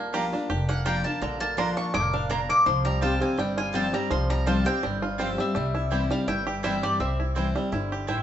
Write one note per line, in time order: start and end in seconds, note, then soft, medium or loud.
0.00 0.30 A#1 loud
0.00 0.47 A#2 medium
0.00 0.69 A#3 medium
0.00 0.33 D4 medium
0.00 0.17 F4 medium
0.13 0.32 F3 medium
0.13 0.23 A#3 medium
0.13 0.32 A#3 loud
0.13 0.32 D4 loud
0.13 0.23 F4 medium
0.13 0.31 F4 medium
0.13 0.49 G4 medium
0.13 0.23 D5 medium
0.13 0.23 A#5 medium
0.32 0.83 D4 medium
0.32 0.50 D4 medium
0.32 0.49 F4 medium
0.50 1.03 F1 medium
0.50 1.18 F2 medium
0.50 0.85 G4 medium
0.69 1.04 A#3 medium
0.69 0.85 F#5 loud
0.85 1.04 F3 medium
0.85 0.95 A#3 medium
0.85 1.05 A#3 loud
0.85 1.05 D4 loud
0.85 0.95 F4 loud
0.85 1.03 F4 loud
0.85 1.37 G4 medium
0.85 0.95 D5 medium
0.85 1.04 G5 loud
0.85 0.95 A#5 loud
1.04 1.40 A#3 medium
1.04 1.22 D4 soft
1.04 1.21 F4 medium
1.04 1.21 A5 loud
1.21 1.75 A#1 medium
1.21 1.91 A#2 medium
1.21 1.73 D3 medium
1.21 1.40 A#5 medium
1.40 1.91 A#3 medium
1.40 1.57 A5 loud
1.57 1.92 F3 medium
1.57 1.67 A#3 medium
1.57 1.92 A#3 medium
1.57 1.92 D4 loud
1.57 1.76 D4 medium
1.57 1.67 F4 medium
1.57 1.93 F4 loud
1.57 1.68 D5 loud
1.57 1.68 A#5 loud
1.57 1.77 C6 loud
1.77 2.12 D4 medium
1.77 1.94 C#6 loud
1.94 2.47 F1 medium
1.94 2.28 A2 medium
1.94 2.02 G#3 medium
1.94 2.13 D6 loud
2.02 2.30 A#3 medium
2.13 2.29 D4 medium
2.13 2.30 F5 medium
2.29 2.64 A#2 loud
2.29 2.39 A#3 medium
2.29 2.67 D4 medium
2.29 2.40 F4 loud
2.29 2.40 D5 loud
2.29 2.49 A#5 loud
2.29 2.40 A#5 loud
2.49 2.66 A#3 medium
2.49 2.66 D6 loud
2.66 3.19 C2 loud
2.66 3.35 C3 medium
2.66 3.42 F3 medium
2.66 2.84 C6 medium
2.85 3.38 G3 medium
2.85 3.02 A#5 loud
3.01 3.20 F3 medium
3.01 3.21 G3 medium
3.01 3.11 C4 medium
3.01 3.21 C4 loud
3.01 3.12 F4 medium
3.01 3.54 F4 medium
3.01 3.19 G4 loud
3.01 3.12 C5 medium
3.01 3.12 G5 medium
3.01 3.21 A5 loud
3.20 3.74 C4 medium
3.20 3.38 C4 medium
3.20 3.37 G4 medium
3.20 3.38 G#5 medium
3.37 3.91 G1 medium
3.37 4.07 G2 medium
3.37 3.93 G3 medium
3.37 3.57 G5 medium
3.58 4.07 F4 medium
3.58 3.74 G#5 loud
3.73 3.92 F3 loud
3.73 3.92 G3 loud
3.73 3.84 C4 medium
3.73 3.93 C4 loud
3.73 4.26 C4 medium
3.73 3.84 F4 medium
3.73 3.92 G4 loud
3.73 3.84 C5 loud
3.73 3.84 G5 loud
3.73 3.93 A5 medium
3.93 4.29 G3 medium
3.93 4.11 C4 medium
3.93 4.10 G4 medium
3.93 4.10 A#5 loud
4.11 4.64 C2 medium
4.11 4.80 C3 loud
4.11 4.62 F3 medium
4.11 4.30 C6 loud
4.30 4.80 G3 medium
4.30 4.47 A#5 loud
4.46 4.65 F3 medium
4.46 4.65 G3 medium
4.46 4.56 C4 medium
4.46 4.66 C4 loud
4.46 4.56 F4 medium
4.46 4.98 F4 medium
4.46 4.64 G4 loud
4.46 4.56 C5 loud
4.46 4.56 G5 medium
4.46 4.65 A5 loud
4.65 5.16 C4 medium
4.65 4.83 C4 medium
4.65 4.82 G4 medium
4.65 5.00 G5 loud
4.83 5.36 G1 loud
4.83 5.52 G2 medium
4.83 5.35 G3 medium
5.02 5.52 F4 medium
5.18 5.37 F3 medium
5.18 5.38 G3 loud
5.18 5.28 C4 loud
5.18 5.56 C4 medium
5.18 5.38 C4 loud
5.18 5.28 F4 loud
5.18 5.37 G4 loud
5.18 5.29 C5 loud
5.18 5.29 G5 loud
5.38 5.54 G3 medium
5.38 5.56 C4 medium
5.38 5.55 G4 medium
5.38 6.11 E5 loud
5.55 6.08 C2 medium
5.55 6.25 C3 medium
5.55 6.10 G3 medium
5.75 6.28 E4 medium
5.90 6.10 E3 medium
5.90 6.10 G3 medium
5.90 6.00 C4 medium
5.90 6.10 C4 loud
5.90 6.01 E4 medium
5.90 6.09 E4 medium
5.90 6.43 G4 medium
5.90 6.01 C5 medium
5.90 6.01 G5 medium
6.10 6.61 G3 medium
6.10 6.28 C4 medium
6.10 6.27 E4 medium
6.10 6.27 F5 loud
6.28 6.81 G1 loud
6.28 6.97 G2 medium
6.28 6.79 E4 medium
6.28 6.64 G5 loud
6.47 6.82 G4 medium
6.63 6.98 E3 medium
6.63 6.98 G3 medium
6.63 7.15 G3 medium
6.63 6.73 C4 loud
6.63 6.99 C4 loud
6.63 6.73 E4 loud
6.63 6.99 E4 loud
6.63 6.73 C5 medium
6.63 6.82 E5 loud
6.63 6.74 G5 loud
6.83 7.33 G4 medium
6.83 6.99 D5 medium
7.00 7.53 C2 medium
7.00 7.69 C3 medium
7.00 7.35 C4 medium
7.00 7.68 E5 medium
7.20 7.69 E4 medium
7.35 7.54 E3 medium
7.35 7.55 G3 medium
7.35 7.45 C4 medium
7.35 7.88 C4 medium
7.35 7.55 C4 medium
7.35 7.45 E4 medium
7.35 7.54 E4 medium
7.35 7.46 C5 medium
7.35 7.46 G5 medium
7.55 8.05 G3 medium
7.55 7.73 C4 soft
7.55 7.72 E4 medium
7.72 8.23 G1 medium
7.72 8.07 D3 medium
7.72 8.07 E4 medium
7.92 8.23 G4 medium
8.07 8.23 A2 medium
8.07 8.18 C4 medium
8.07 8.18 E4 medium
8.07 8.23 E4 medium
8.07 8.18 C5 medium
8.07 8.18 G5 loud